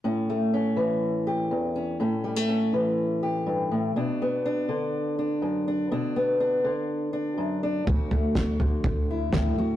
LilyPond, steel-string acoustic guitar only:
\new Staff \with { instrumentName = "Steel-string acoustic guitar" } { \time 4/4 \key a \mixolydian \tempo 4 = 123 << { cis'8 a8 cis'4. g'4 cis'8 | cis'8 g16 a16 cis'4. g'4. | d'8 b8 d'4. d'4 d'8 | d'8 b8 d'4. d'4 d'8 |
fis'8 a8 fis'4. e'4 fis'8 | } \\ { a,4. e4. e,4 | a,4. e4. g,8 a,8 | b,4. d4. fis,4 | b,4. d4. fis,4 |
d,4. d4. a,4 | } >> }